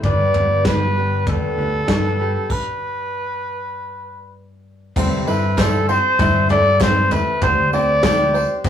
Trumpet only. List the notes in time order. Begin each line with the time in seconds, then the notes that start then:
0.05 D5
0.67 B4
1.28 A4
2.51 B4
5.27 B4
5.58 A4
5.88 C5
6.51 D5
6.81 C5
7.12 B4
7.43 C5
7.73 D5